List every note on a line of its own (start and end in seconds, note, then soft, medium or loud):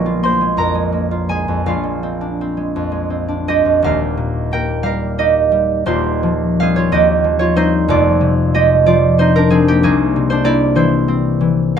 0.00 1.65 A#1 medium
0.00 0.40 G#3 medium
0.00 0.22 A#3 medium
0.00 1.68 C#5 medium
0.00 1.68 C#6 loud
0.06 1.10 F4 medium
0.23 0.91 A#3 medium
0.23 3.89 C5 medium
0.23 0.81 C6 loud
0.41 0.74 G#3 soft
0.57 1.47 F2 medium
0.57 3.84 A#4 medium
0.57 4.48 A#5 loud
0.75 1.28 G#3 medium
0.92 4.50 A#3 medium
1.11 1.67 F4 medium
1.29 1.82 G#3 soft
1.29 3.89 G#4 medium
1.29 3.88 G#5 medium
1.48 1.69 F2 medium
1.66 3.88 A#1 medium
1.66 5.58 F4 medium
1.66 3.83 F5 medium
1.83 2.56 G#3 soft
2.03 2.40 C4 medium
2.21 3.27 D4 soft
2.41 3.09 C4 medium
2.57 2.90 G#3 soft
2.76 3.64 F2 soft
2.92 3.47 G#3 soft
3.10 3.87 C4 soft
3.28 3.87 D4 medium
3.48 3.87 G#3 soft
3.48 5.19 G4 medium
3.48 5.18 D#5 medium
3.65 3.87 F2 soft
3.82 5.85 D#1 medium
3.82 5.85 D#2 medium
3.82 4.53 A#4 medium
3.82 4.82 F5 medium
4.17 5.89 A#2 medium
4.52 5.89 A#3 medium
4.52 4.84 A#4 medium
4.52 7.93 G5 loud
4.83 5.50 G3 medium
4.83 5.90 A#4 medium
4.83 6.59 F5 loud
5.18 5.89 D#4 soft
5.18 6.93 G4 medium
5.18 5.90 D#5 loud
5.52 6.59 G3 medium
5.86 6.95 D#1 medium
5.86 6.91 D#2 medium
5.86 6.76 F4 medium
5.86 7.55 C5 loud
6.23 7.23 F3 medium
6.60 7.54 G3 medium
6.60 7.55 C4 medium
6.60 6.97 G#4 medium
6.60 9.84 F5 loud
6.76 7.39 F4 medium
6.76 7.05 C#5 medium
6.92 7.92 D#2 medium
6.92 7.93 G4 medium
6.92 7.92 D#5 loud
7.24 8.85 F3 medium
7.39 7.89 F4 medium
7.39 7.68 C#5 medium
7.56 7.92 G3 medium
7.56 9.17 C4 medium
7.56 7.92 D#4 medium
7.56 9.18 C5 loud
7.88 9.83 F1 medium
7.88 9.83 F2 medium
7.88 8.86 F4 medium
7.88 8.85 D5 loud
8.21 9.83 C3 medium
8.54 11.79 G#3 medium
8.54 9.67 G4 medium
8.54 9.08 D#5 loud
8.86 9.50 F3 medium
8.86 9.85 F4 medium
8.86 9.84 D5 loud
9.18 9.50 C4 medium
9.18 9.86 D#4 medium
9.18 10.29 C5 loud
9.36 9.86 D4 medium
9.36 9.62 A#4 loud
9.50 9.85 F3 medium
9.50 11.07 C4 medium
9.50 9.77 G#4 loud
9.68 9.83 A#3 medium
9.68 9.94 G4 loud
9.83 11.79 C2 medium
9.83 10.43 A#3 medium
9.83 11.77 G#4 loud
10.16 11.79 C3 medium
10.30 11.79 D4 medium
10.30 10.55 C5 loud
10.44 11.79 A#3 medium
10.44 10.76 E4 loud
10.44 10.98 D5 loud
10.75 11.39 E3 medium
10.75 11.79 E4 medium
10.75 11.79 C5 loud
11.08 11.79 C4 medium
11.41 11.78 E3 medium